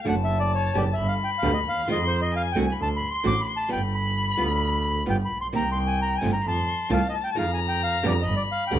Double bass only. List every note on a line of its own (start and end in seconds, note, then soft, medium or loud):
0.06 0.71 F#1 loud
0.75 0.94 F#1 loud
0.97 1.16 G1 loud
1.44 1.62 D2 loud
1.66 1.87 D#2 medium
1.88 2.53 F2 loud
2.56 2.75 C2 loud
2.79 2.98 D2 loud
3.25 3.43 A1 loud
3.71 4.35 G1 loud
4.39 5.04 D2 loud
5.08 5.27 G1 loud
5.30 5.53 A#1 medium
5.54 6.19 C2 loud
6.22 6.41 G1 loud
6.45 6.64 F2 medium
6.91 7.10 C2 loud
7.36 8.00 F2 loud
8.04 8.23 F2 loud
8.26 8.45 G1 loud
8.72 8.79 D2 loud